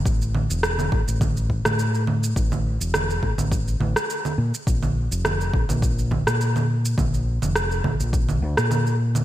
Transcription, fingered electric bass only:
0.06 0.46 A1 medium
0.50 0.88 E1 medium
0.92 1.05 A1 medium
1.08 1.61 A1 medium
1.65 2.33 A2 medium
2.36 2.76 A1 medium
2.80 3.19 E1 medium
3.23 3.36 A1 medium
3.38 3.77 A1 medium
3.80 3.93 A1 medium
4.38 4.51 A#2 medium
4.67 5.07 A#1 medium
5.11 5.50 F1 medium
5.54 5.66 A#1 medium
5.69 6.22 A#1 medium
6.26 6.94 A#2 medium
6.98 7.38 A#1 medium
7.42 7.81 F1 medium
7.84 7.97 A#1 medium
8.00 8.42 A#1 medium
8.42 8.55 D2 medium
8.58 9.25 A#2 loud

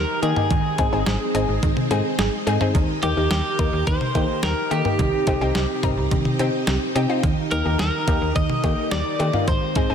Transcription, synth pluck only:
0.22 0.35 A#3 medium
0.22 0.35 D#4 medium
0.22 0.35 G4 medium
0.37 0.51 A#3 medium
0.37 0.51 D#4 medium
0.37 0.51 G4 medium
0.79 0.91 C4 medium
0.79 0.91 D#4 medium
0.79 0.91 G#4 medium
0.93 1.17 C4 medium
0.93 1.17 D#4 medium
0.93 1.17 G#4 medium
1.35 1.59 C4 medium
1.35 1.59 D#4 medium
1.35 1.59 G#4 loud
1.91 2.15 C4 medium
1.91 2.15 D#4 medium
1.91 2.15 G#4 loud
2.47 2.59 C4 medium
2.47 2.59 D#4 medium
2.47 2.59 G#4 loud
2.61 2.75 C4 medium
2.61 2.75 D#4 medium
2.61 2.75 G#4 medium
3.03 3.15 A#3 medium
3.03 3.15 D#4 medium
3.03 3.15 G4 medium
3.17 3.42 A#3 medium
3.17 3.42 D#4 medium
3.17 3.42 G4 medium
3.59 3.84 A#3 medium
3.59 3.84 D#4 medium
3.59 3.84 A#4 medium
4.15 4.40 A#3 medium
4.15 4.40 D#4 medium
4.15 4.40 G4 medium
4.71 4.83 A#3 medium
4.71 4.83 D#4 medium
4.71 4.83 G4 medium
4.85 4.99 A#3 medium
4.85 4.99 D#4 medium
4.85 4.99 G4 medium
5.27 5.40 C4 medium
5.27 5.40 D#4 medium
5.27 5.40 G4 medium
5.41 5.66 C4 medium
5.41 5.66 D#4 medium
5.41 5.66 G4 medium
5.83 6.08 C4 medium
5.83 6.08 D#4 medium
5.83 6.08 A#4 loud
6.39 6.64 C4 medium
6.39 6.64 D#4 medium
6.39 6.64 G4 loud
6.96 7.08 C4 medium
6.96 7.08 D#4 medium
6.96 7.08 G4 loud
7.09 7.24 C4 medium
7.09 7.24 D#4 medium
7.09 7.24 F4 loud
7.52 7.64 A#3 medium
7.52 7.64 D#4 medium
7.52 7.64 G4 medium
7.65 7.90 A#3 medium
7.65 7.90 D#4 medium
7.65 7.90 G4 medium
8.08 8.32 A#3 medium
8.08 8.32 D#4 medium
8.08 8.32 G4 medium
8.64 8.88 A#3 medium
8.64 8.88 D#4 medium
8.64 8.88 G4 medium
9.20 9.32 A#3 medium
9.20 9.32 D#4 medium
9.20 9.32 G4 medium
9.34 9.48 A#3 medium
9.34 9.48 D#4 medium
9.34 9.48 F4 medium
9.76 9.88 C4 medium
9.76 9.88 D#4 medium
9.76 9.88 G#4 medium
9.90 9.95 C4 medium
9.90 9.95 D#4 medium
9.90 9.95 G#4 medium

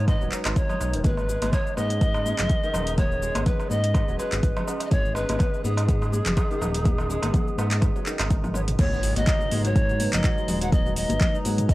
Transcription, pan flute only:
0.08 0.32 D#5 medium
0.56 1.01 C#5 loud
1.04 1.54 B4 loud
1.52 1.78 C#5 loud
1.77 2.99 D#5 loud
2.97 3.48 C#5 loud
3.46 3.72 B4 medium
3.70 4.20 D#5 loud
4.18 4.65 B4 medium
4.86 4.93 D#5 medium
4.91 5.17 C#5 loud
5.15 5.65 B4 loud
5.64 8.30 G#4 loud
8.55 8.61 C#5 medium
8.79 9.18 C#5 loud
9.16 9.66 D#5 loud
9.65 10.15 C#5 loud
10.13 10.61 D#5 loud
10.62 10.74 F#5 loud
10.73 10.96 D#5 loud
10.96 11.37 D#5 loud
11.69 11.74 D#5 loud

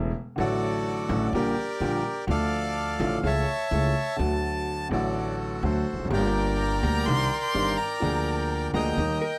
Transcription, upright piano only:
0.00 0.10 E1 loud
0.00 0.10 E2 medium
0.00 0.10 E3 medium
0.00 0.10 A3 medium
0.00 0.10 E4 medium
0.36 1.06 A1 loud
0.36 1.06 A2 medium
0.36 1.05 D3 medium
0.36 1.05 F#3 medium
0.36 1.06 A3 medium
0.40 1.07 F#4 loud
1.09 1.29 A1 medium
1.09 1.29 A2 medium
1.09 1.29 D3 medium
1.09 1.29 F#3 medium
1.09 1.29 A3 medium
1.09 1.29 F#4 medium
1.34 1.54 A#1 medium
1.34 1.54 A#2 loud
1.34 1.53 D3 medium
1.34 1.54 G3 medium
1.34 1.54 A#3 medium
1.34 1.54 G4 loud
1.81 2.01 A#1 medium
1.81 2.01 A#2 loud
1.81 2.01 D3 medium
1.81 2.01 G3 medium
1.81 2.01 A#3 medium
1.81 2.01 G4 medium
2.27 2.96 D2 loud
2.27 2.96 D3 loud
2.27 2.96 F3 medium
2.27 2.97 A3 medium
2.27 2.97 F4 medium
3.00 3.20 A1 loud
3.00 3.20 A2 medium
3.00 3.20 D3 medium
3.00 3.20 F3 medium
3.00 3.20 A3 medium
3.00 3.20 F4 loud
3.23 3.43 C#2 loud
3.23 3.43 C#3 loud
3.23 3.44 E3 medium
3.23 3.44 A3 medium
3.23 3.44 E4 medium
3.71 3.91 C#2 medium
3.71 3.91 C#3 medium
3.71 3.91 E3 medium
3.71 3.92 A3 medium
3.71 3.92 E4 medium
4.18 4.87 D2 loud
4.18 4.87 D3 medium
4.18 4.86 F#3 medium
4.18 4.87 A3 medium
4.18 4.88 F#4 medium
4.89 5.59 A1 loud
4.89 5.59 A2 medium
4.89 5.58 D3 medium
4.89 5.59 F#3 medium
4.89 5.60 A3 medium
4.89 5.60 F#4 medium
5.63 5.83 D2 medium
5.63 5.83 D3 medium
5.63 5.83 F#3 medium
5.63 5.83 A3 medium
5.63 5.83 F#4 medium
5.93 5.99 E2 medium
6.00 6.05 F2 medium
6.05 6.11 F#2 medium
6.05 6.78 D3 medium
6.10 6.79 G1 loud
6.10 6.79 G2 medium
6.10 6.79 G3 medium
6.10 6.79 A#3 medium
6.10 6.80 G4 medium
6.83 7.03 D2 medium
6.83 7.03 D3 medium
6.83 7.03 G3 medium
6.83 7.03 A#3 medium
6.83 7.03 G4 medium
7.07 7.27 C2 medium
7.07 7.27 C3 medium
7.07 7.27 D#3 medium
7.07 7.27 C4 medium
7.07 7.27 D4 medium
7.07 7.27 G4 medium
7.54 7.75 G1 medium
7.54 7.75 G2 loud
7.54 7.74 D#3 medium
7.54 7.75 C4 medium
7.54 7.75 D4 medium
7.54 7.75 G4 medium
8.00 8.70 D2 medium
8.00 8.70 D3 loud
8.00 8.69 F3 medium
8.00 8.70 A#3 medium
8.00 8.71 D4 medium
8.04 8.71 G#4 medium
8.73 8.94 D2 loud
8.73 8.94 D3 loud
8.73 8.94 F3 medium
8.73 8.94 A#3 medium
8.73 8.94 D4 medium
8.73 8.94 G#4 medium
8.98 9.18 D#2 medium
8.98 9.18 D#3 medium
8.98 9.18 G3 medium
8.98 9.18 A#3 medium
8.98 9.18 G4 medium

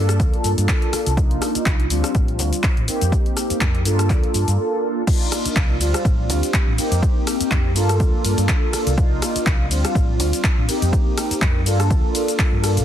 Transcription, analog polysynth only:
0.00 1.12 A#3 medium
0.00 1.13 D4 medium
0.00 1.13 F4 medium
0.00 1.13 A4 loud
1.16 1.86 A#3 medium
1.16 1.86 D4 medium
1.16 1.86 D#4 medium
1.16 1.86 F4 medium
1.90 2.83 G3 medium
1.90 2.83 C4 medium
1.90 2.84 D4 medium
1.90 2.84 F4 medium
2.87 3.81 A#3 medium
2.87 3.81 C4 medium
2.87 3.81 D#4 medium
2.87 3.82 G4 medium
3.84 5.03 A#3 medium
3.84 5.03 D4 medium
3.84 5.03 F4 medium
3.84 5.03 A4 loud
5.07 5.76 A#3 medium
5.07 5.76 D4 medium
5.07 5.76 D#4 medium
5.07 5.77 F4 medium
5.80 6.73 G3 medium
5.80 6.74 C4 medium
5.80 6.74 D4 medium
5.80 6.74 F4 medium
6.77 7.71 A#3 medium
6.77 7.71 C4 medium
6.77 7.71 D#4 medium
6.77 7.72 G4 medium
7.74 8.93 A#3 loud
7.74 8.93 D4 medium
7.74 8.93 F4 medium
7.74 8.94 A4 loud
8.96 9.66 A#3 medium
8.96 9.66 D4 medium
8.96 9.67 D#4 medium
8.96 9.67 F4 medium
9.70 10.64 G3 medium
9.70 10.64 C4 medium
9.70 10.64 D4 medium
9.70 10.64 F4 medium
10.67 11.61 A#3 medium
10.67 11.61 C4 medium
10.67 11.62 D#4 medium
10.67 11.62 G4 medium
11.65 12.83 A#3 medium
11.65 12.83 D4 medium
11.65 12.84 F4 medium
11.65 12.84 A4 loud

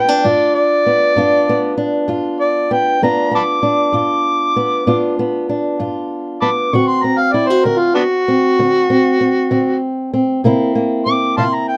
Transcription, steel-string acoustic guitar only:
0.00 0.28 B3 soft
0.00 0.25 F4 medium
0.08 1.16 D4 soft
0.24 0.80 G2 medium
0.24 1.17 F4 medium
0.86 1.16 B3 medium
1.16 1.72 G2 medium
1.16 1.48 B3 medium
1.16 1.77 D4 soft
1.16 2.07 F4 medium
1.49 2.70 B3 medium
1.77 3.03 D4 medium
2.08 2.64 G2 medium
2.08 2.98 F4 medium
2.71 2.98 B3 medium
3.02 3.58 G2 medium
3.02 3.30 B3 medium
3.02 3.62 D4 medium
3.02 3.93 F4 medium
3.31 4.55 B3 medium
3.63 4.87 D4 medium
3.92 4.49 G2 medium
3.92 4.87 F4 medium
4.56 4.86 B3 medium
4.87 5.43 G2 medium
4.87 5.18 B3 medium
4.87 5.48 D4 medium
4.87 5.79 F4 medium
5.19 6.41 B3 medium
5.49 6.69 D4 medium
5.79 6.35 G2 medium
5.79 6.69 F4 medium
6.42 6.69 B3 soft
6.73 7.28 D3 medium
6.73 7.04 C4 medium
6.73 7.34 F#4 medium
7.04 8.28 C4 soft
7.34 7.50 E4 medium
7.50 7.65 F#4 soft
7.65 8.21 D3 medium
7.65 10.40 F#4 medium
8.28 8.59 C4 medium
8.59 9.14 D3 medium
8.59 8.89 C4 soft
8.90 9.19 C4 medium
9.21 9.50 C4 medium
9.51 10.06 D3 medium
9.51 10.12 C4 medium
10.13 10.40 C4 medium
10.44 10.99 C3 medium
10.44 10.74 A#3 medium
10.44 11.05 C4 medium
10.44 11.37 E4 medium
10.75 11.77 A#3 medium
11.06 11.77 C4 medium
11.37 11.77 C3 medium
11.37 11.77 E4 medium

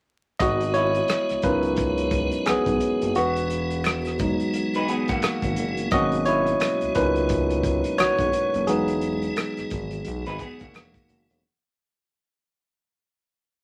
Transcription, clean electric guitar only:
4.76 4.89 D#4 medium
4.76 4.88 B4 medium
4.89 5.08 B3 medium
4.89 5.08 G#4 medium
5.09 5.88 A#3 medium
5.09 5.88 F#4 medium
10.27 10.40 D#4 medium
10.27 10.40 B4 medium
10.41 10.60 B3 medium
10.41 10.60 G#4 medium
10.61 11.40 A#3 medium
10.61 11.40 F#4 medium

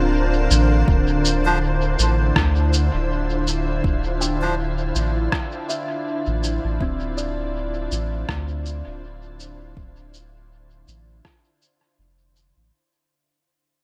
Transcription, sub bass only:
0.00 0.48 D1 medium
0.51 0.84 A1 loud
0.88 1.96 D1 medium
1.99 2.32 A1 loud
2.36 2.90 D2 medium
2.94 3.81 D1 medium
3.84 4.92 D1 loud
4.95 5.28 A1 loud
6.27 6.59 A1 loud
6.64 6.79 A1 medium
6.81 7.88 D1 medium
7.92 8.25 A1 loud
8.29 8.82 D2 medium
8.87 9.74 D1 medium
9.77 10.85 D1 medium
10.88 11.21 A1 medium
11.99 12.53 F1 medium
12.57 12.71 A1 medium

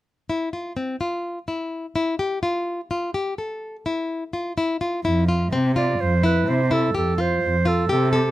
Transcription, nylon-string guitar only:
0.30 0.48 E4 soft
0.53 0.72 F4 soft
0.77 0.95 C4 medium
1.01 1.38 F4 soft
1.48 1.85 E4 soft
1.96 2.14 E4 soft
2.19 2.38 G4 medium
2.43 2.80 F4 medium
2.91 3.09 F4 soft
3.14 3.33 G4 medium
3.38 3.76 A4 soft
3.86 4.23 E4 soft
4.33 4.52 F4 soft
4.58 4.76 E4 medium
4.81 5.00 F4 medium
5.05 5.23 E4 medium
5.28 5.47 F4 medium
5.53 5.71 C4 medium
5.76 6.13 F4 medium
6.23 6.61 E4 medium
6.71 6.90 E4 medium
6.95 7.13 G4 medium
7.18 7.55 F4 medium
7.65 7.84 F4 medium
7.89 8.08 G4 medium
8.13 8.31 A4 medium

